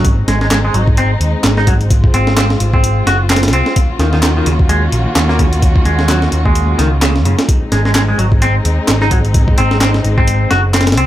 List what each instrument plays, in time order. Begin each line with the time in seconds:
Already playing: picked electric bass G#1
0.05 string section G#3 C4 D#4, kick, closed hi-hat
0.27 picked electric bass G#1, clean electric guitar G#3, snare, closed hi-hat
0.41 clean electric guitar G#3, snare
0.51 clean electric guitar G#3, snare, clap, closed hi-hat
0.65 clean electric guitar G#3
0.74 picked electric bass G#1, clean electric guitar F#3, closed hi-hat
0.88 kick
0.97 clean electric guitar C4, closed hi-hat
1.20 picked electric bass D#2, closed hi-hat
1.34 muted picked electric bass stroke
1.44 picked electric bass G#1, snare, clap, closed hi-hat
1.57 clean electric guitar D#4, snare
1.67 clean electric guitar F#3, kick, closed hi-hat
1.81 closed hi-hat
1.90 string section F4, kick, closed hi-hat
2.04 kick
2.14 picked electric bass G#1, clean electric guitar C4, closed hi-hat
2.27 snare
2.37 clean electric guitar C4, snare, clap, closed hi-hat
2.50 snare
2.60 picked electric bass G#1, closed hi-hat
2.73 clean electric guitar C4, kick
2.84 closed hi-hat
3.07 picked electric bass F#1, clean electric guitar F#4, snare, closed hi-hat
3.30 clean electric guitar C4, snare, clap, closed hi-hat
3.36 snare, closed hi-hat
3.43 snare, closed hi-hat
3.48 snare, closed hi-hat
3.53 picked electric bass C2, clean electric guitar C4, closed hi-hat
3.66 snare
3.76 string section D#3 A#3 C#4 F#4, kick, closed hi-hat
3.99 picked electric bass D#2, clean electric guitar D#3, snare, closed hi-hat
4.13 clean electric guitar D#3, snare
4.23 clean electric guitar D#3, snare, clap, closed hi-hat
4.37 clean electric guitar D#3
4.46 picked electric bass D#2, clean electric guitar C#3, closed hi-hat
4.59 kick
4.69 clean electric guitar G#3, closed hi-hat
4.92 picked electric bass A#1, closed hi-hat
5.06 muted picked electric bass stroke
5.16 picked electric bass D#2, snare, clap, closed hi-hat
5.29 clean electric guitar A#3, snare
5.39 clean electric guitar C#3, kick, closed hi-hat
5.53 closed hi-hat
5.62 kick, closed hi-hat
5.76 kick
5.85 picked electric bass D#2, clean electric guitar G#3, closed hi-hat
5.99 snare
6.09 clean electric guitar F#3, snare, clap, closed hi-hat
6.22 snare
6.32 picked electric bass D#2, closed hi-hat
6.46 clean electric guitar G#3, kick
6.55 closed hi-hat
6.78 picked electric bass C#2, clean electric guitar D#3, snare, closed hi-hat
7.02 clean electric guitar C#3, snare, clap, closed hi-hat
7.16 snare
7.25 picked electric bass F#2, clean electric guitar C#3, closed hi-hat
7.39 snare, closed hi-hat
7.49 string section G#3 C4 D#4, kick, closed hi-hat
7.72 picked electric bass G#1, clean electric guitar G#3, snare, closed hi-hat
7.85 clean electric guitar G#3, snare
7.95 clean electric guitar G#3, snare, clap, closed hi-hat
8.08 clean electric guitar G#3
8.18 picked electric bass G#1, clean electric guitar F#3, closed hi-hat
8.32 kick
8.42 clean electric guitar C4, closed hi-hat
8.65 picked electric bass D#2, closed hi-hat
8.78 muted picked electric bass stroke
8.88 picked electric bass G#1, snare, clap, closed hi-hat
9.01 clean electric guitar D#4, snare
9.11 clean electric guitar F#3, kick, closed hi-hat
9.25 closed hi-hat
9.34 kick, closed hi-hat
9.48 kick
9.58 picked electric bass G#1, clean electric guitar C4, closed hi-hat
9.71 snare
9.81 clean electric guitar C4, snare, clap, closed hi-hat
9.94 snare
10.04 picked electric bass G#1, closed hi-hat
10.18 clean electric guitar C4, kick
10.28 closed hi-hat
10.51 picked electric bass F#1, clean electric guitar F#4, snare, closed hi-hat
10.74 clean electric guitar C4, snare, clap, closed hi-hat
10.81 snare, closed hi-hat
10.87 snare, closed hi-hat
10.92 snare, closed hi-hat
10.97 picked electric bass C2, clean electric guitar C4, closed hi-hat